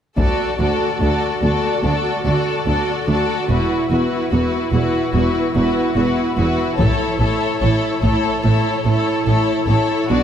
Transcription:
0.17 D2 F#4 A4 D5, taiko
0.59 D2 F#4 A4 D5
1.01 D2 F#4 A4 D5
1.43 D2 F#4 A4 D5
1.83 D2 F#4 A4 D5
2.25 D2 F#4 A4 D5
2.66 D2 F#4 A4 D5
3.08 D2 F#4 A4 D5
3.49 E1 E2 E4 F#4 B4
3.90 E1 E2 E4 F#4 B4
4.31 E1 E2 E4 F#4 B4
4.72 E1 E2 E4 F#4 B4
5.12 E1 E2 E4 F#4
5.17 B4
5.54 E1 E2 E4 F#4
5.59 B4
5.96 E1 E2 E4 F#4 B4
6.35 E1 E2 E4 F#4
6.40 B4
6.77 A1 A2 E4 A4 C#5, taiko
7.19 A1 A2 E4 A4 C#5
7.59 A1 A2 E4 A4 C#5
8.02 A1 A2 E4 A4 C#5, taiko
8.43 A1 A2 E4 A4 C#5
8.85 A1 A2 E4 A4 C#5
9.25 A1 A2 A4 C#5
9.30 E4
9.66 A1 A2 E4 A4 C#5
10.09 B1 B2 D4 F#4 D5

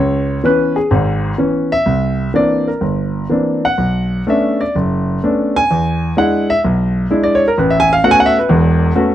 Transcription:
Already playing: C#2 C#5
0.44 E3 B3 C#4 B4
0.76 G#4
0.91 G#1 G#2
1.38 E3 B3 C#4
1.72 E5
1.86 C2
2.34 E3 A#3 C4 D4 D5
2.68 A#4
2.81 G1
3.30 E3 A#3 C4 D4
3.65 F#5
3.78 B1
4.27 A3 B3 C#4 D4 E5
4.61 D5
4.75 F#1
5.24 A3 B3 C#4 D4
5.56 G#5
5.71 E2
6.17 G#3 D4 E4 F#5
6.50 E5
6.65 B1
7.11 G#3 D4 E4
7.23 D5
7.35 C#5
7.48 A#4
7.58 A1 B4
7.70 E5
7.80 G#5
7.93 F5
8.04 A3 B3 C#4 F#4 F#5
8.11 G#5
8.20 F#5
8.26 E5
8.39 B4
8.49 E1 E2
8.95 A3 B3 C#4 F#4

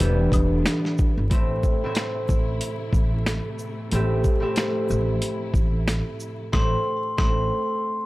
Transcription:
Already playing: A3 E4
0.00 E1 D3 E3 G3 B3 D4 G4 E5, closed hi-hat, shaker
0.32 E1, kick, closed hi-hat, high woodblock, shaker
0.66 snare, closed hi-hat, shaker
0.85 snare
0.98 kick, shaker
1.17 G1
1.30 A1 A2 C3 E3 A3 C4 E4 E5, kick, closed hi-hat, shaker
1.63 kick, shaker
1.84 A2 A3 C4 E4 E5
1.95 snare, closed hi-hat, shaker
2.28 A1, kick, shaker
2.29 shaker
2.61 closed hi-hat, shaker
2.92 A1, kick, shaker
3.26 snare, closed hi-hat, shaker
3.59 shaker
3.91 A1 A2 F3 A3 C4 E4 G4 E5, closed hi-hat, shaker
4.24 kick, shaker
4.40 A2 A3 C4 G4 E5
4.56 snare, closed hi-hat, shaker
4.88 A1, shaker
4.91 shaker
5.22 closed hi-hat, shaker
5.54 A1, kick, shaker
5.88 snare, closed hi-hat, shaker
6.20 shaker
6.52 A1 A2 C3 E3 A3 C4 E4 E5 C6, kick, snare, high woodblock
7.17 A1 A2 A3 C4 E4 E5 C6, kick, snare, high woodblock

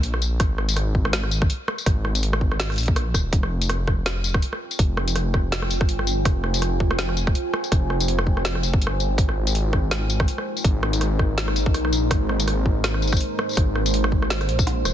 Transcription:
Already playing: A#1
0.03 closed hi-hat
0.14 cross-stick
0.22 tambourine
0.40 G#1, kick, cross-stick, closed hi-hat
0.58 cross-stick
0.69 closed hi-hat, tambourine
0.76 cross-stick, closed hi-hat
0.95 kick
1.05 cross-stick
1.13 snare, closed hi-hat
1.23 cross-stick
1.31 tambourine
1.42 kick, cross-stick
1.50 closed hi-hat
1.68 cross-stick
1.78 tambourine
1.86 G#1, kick, cross-stick, closed hi-hat
2.05 cross-stick
2.15 closed hi-hat, tambourine
2.23 closed hi-hat
2.33 cross-stick
2.41 kick
2.52 cross-stick
2.60 snare, closed hi-hat
2.70 cross-stick, closed hi-hat
2.72 closed hi-hat
2.74 closed hi-hat
2.76 A#1, closed hi-hat
2.78 closed hi-hat, tambourine
2.81 closed hi-hat
2.83 closed hi-hat
2.86 kick, closed hi-hat
2.96 cross-stick, closed hi-hat
3.14 D#1, kick, cross-stick, tambourine
3.33 F1 F4, kick, closed hi-hat
3.43 cross-stick
3.49 C5 G5
3.62 closed hi-hat, tambourine
3.69 cross-stick, closed hi-hat
3.88 kick, cross-stick
4.06 cross-stick, snare, closed hi-hat
4.24 tambourine
4.34 kick, cross-stick
4.39 G#5, closed hi-hat
4.53 cross-stick
4.71 tambourine
4.79 F1, kick, closed hi-hat
4.97 cross-stick
5.08 closed hi-hat, tambourine
5.16 cross-stick, closed hi-hat
5.34 kick, cross-stick
5.52 snare, closed hi-hat
5.62 cross-stick
5.71 closed hi-hat, tambourine
5.81 G1, kick, cross-stick
5.89 closed hi-hat
5.99 cross-stick
6.07 tambourine
6.25 F1, kick, cross-stick, closed hi-hat
6.44 cross-stick
6.54 closed hi-hat, tambourine
6.62 cross-stick, closed hi-hat
6.80 kick
6.91 cross-stick
6.99 snare, closed hi-hat
7.09 cross-stick
7.17 tambourine
7.27 kick, cross-stick
7.35 closed hi-hat
7.54 cross-stick
7.64 tambourine
7.72 F1, kick, cross-stick, closed hi-hat
7.90 cross-stick
8.00 closed hi-hat, tambourine
8.08 closed hi-hat
8.19 cross-stick
8.27 kick
8.37 cross-stick
8.45 snare, closed hi-hat
8.55 cross-stick
8.63 tambourine
8.73 G1, kick
8.82 closed hi-hat
8.87 cross-stick
9.00 tambourine
9.18 G#1 G#3, kick, closed hi-hat
9.29 cross-stick
9.47 D#4, closed hi-hat, tambourine
9.55 closed hi-hat
9.73 A#4, kick, cross-stick
9.91 cross-stick, snare, closed hi-hat
10.10 tambourine
10.20 kick, cross-stick
10.28 closed hi-hat
10.38 cross-stick
10.57 tambourine
10.64 G#1, kick, closed hi-hat
10.83 cross-stick
10.93 closed hi-hat, tambourine
11.01 cross-stick, closed hi-hat
11.19 kick, cross-stick
11.38 snare, closed hi-hat
11.48 cross-stick
11.56 closed hi-hat, tambourine
11.66 A#1, kick
11.74 cross-stick, closed hi-hat
11.85 cross-stick
11.93 tambourine
12.11 G#1, kick, cross-stick, closed hi-hat
12.29 cross-stick
12.40 closed hi-hat, tambourine
12.48 cross-stick, closed hi-hat
12.66 kick
12.84 cross-stick, snare, closed hi-hat
12.94 cross-stick
13.02 tambourine
13.07 tambourine
13.13 kick, cross-stick, tambourine
13.16 tambourine
13.21 closed hi-hat
13.39 cross-stick
13.49 tambourine
13.51 tambourine
13.53 tambourine
13.55 G#1, kick, cross-stick, closed hi-hat, tambourine
13.76 cross-stick
13.86 closed hi-hat, tambourine
13.94 closed hi-hat
14.04 cross-stick
14.12 kick
14.22 cross-stick
14.30 snare, closed hi-hat
14.41 cross-stick, closed hi-hat
14.49 A#1, closed hi-hat
14.59 kick, tambourine
14.67 cross-stick, closed hi-hat
14.85 D#1, cross-stick, tambourine

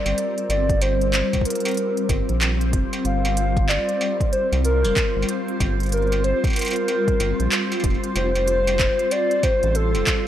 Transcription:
Already playing: G3 C4 F4 A#4 C5 D5
0.05 G1, closed hi-hat, struck metal
0.18 closed hi-hat
0.38 closed hi-hat
0.49 G1 D5, closed hi-hat, struck metal
0.69 kick, closed hi-hat
0.82 C5, closed hi-hat, struck metal
1.01 closed hi-hat
1.13 clap, closed hi-hat
1.33 kick, closed hi-hat, struck metal
1.41 kick
1.45 A#4, closed hi-hat
1.50 closed hi-hat
1.55 closed hi-hat
1.60 closed hi-hat
1.65 closed hi-hat, struck metal
1.68 closed hi-hat
1.71 closed hi-hat
1.74 closed hi-hat
1.77 closed hi-hat
1.97 closed hi-hat
2.09 G1, kick, closed hi-hat, struck metal
2.29 A#1, closed hi-hat
2.41 clap, closed hi-hat, struck metal
2.61 closed hi-hat
2.73 F1, kick, closed hi-hat
2.93 closed hi-hat, struck metal
3.05 G1 F5, closed hi-hat
3.25 closed hi-hat, struck metal
3.37 closed hi-hat
3.57 kick, closed hi-hat
3.69 D5, clap, struck metal
3.89 closed hi-hat
4.01 struck metal
4.20 kick, closed hi-hat
4.33 C5, closed hi-hat
4.52 C2, closed hi-hat, struck metal
4.65 A#4, closed hi-hat
4.84 F1, closed hi-hat, struck metal
4.96 kick, clap, closed hi-hat
5.16 G1
5.22 struck metal
5.29 closed hi-hat
5.48 closed hi-hat
5.60 G1, kick, closed hi-hat, struck metal
5.80 closed hi-hat
5.83 closed hi-hat
5.86 closed hi-hat
5.89 closed hi-hat
5.92 A#4, closed hi-hat
5.97 closed hi-hat
6.02 closed hi-hat
6.07 closed hi-hat
6.12 closed hi-hat, struck metal
6.24 C5, closed hi-hat
6.44 kick, closed hi-hat, struck metal
6.47 struck metal
6.50 struck metal
6.53 A#4, closed hi-hat, struck metal
6.56 closed hi-hat, struck metal
6.61 closed hi-hat, struck metal
6.65 closed hi-hat, struck metal
6.68 closed hi-hat
6.70 closed hi-hat, struck metal
6.73 closed hi-hat
6.76 closed hi-hat
6.88 closed hi-hat, struck metal
7.08 kick, closed hi-hat
7.20 G1, closed hi-hat, struck metal
7.40 A#1, closed hi-hat
7.52 clap, closed hi-hat
7.72 closed hi-hat, struck metal
7.80 F1, kick, closed hi-hat, struck metal
7.84 struck metal
7.90 struck metal
7.94 struck metal
8.04 closed hi-hat
8.16 F1 C5, closed hi-hat, struck metal
8.35 closed hi-hat, struck metal
8.48 closed hi-hat
8.67 closed hi-hat, struck metal
8.79 kick, clap, closed hi-hat
8.99 closed hi-hat
9.11 D5, closed hi-hat, struck metal
9.31 closed hi-hat
9.43 C5, kick, closed hi-hat, struck metal
9.58 A5
9.63 A1, closed hi-hat
9.75 A4, closed hi-hat
9.95 F1, closed hi-hat, struck metal
10.07 kick, clap, closed hi-hat

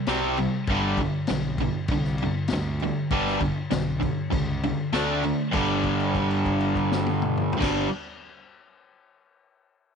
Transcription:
0.07 C2 C3 G3 C4, snare, crash
0.37 C3 G3, crash
0.67 G1 G2 D3, kick, crash
0.72 G3
0.97 G2 D3, kick, crash
1.27 B1 G2 D3, snare, crash
1.58 G2 D3, kick, crash
1.88 C2, kick, crash
1.92 G2 D3
2.04 snare
2.18 crash
2.23 G2 D3
2.48 D2, snare, crash
2.53 G2 D3
2.80 G2, crash
2.84 D3
3.11 G1 G2 D3 G3, kick, crash
3.27 snare
3.40 G2 D3, kick, crash
3.70 B1 G2 D3, snare, crash
4.00 G2 D3, kick, crash
4.30 C#2 G2 D3, kick, crash
4.63 G2 D3, crash
4.93 D2 D3 A3 D4, snare, crash
5.24 D3 A3, crash
5.52 G1 G2 D3, kick, crash
5.56 G3
5.84 kick, crash
6.00 crash
6.15 kick, crash
6.31 crash
6.45 kick, crash
6.61 crash
6.76 kick, crash
6.92 snare
7.06 high tom
7.22 mid tom
7.37 mid tom
7.53 floor tom
7.57 G1 G2 D3, kick
7.62 G3, snare, crash

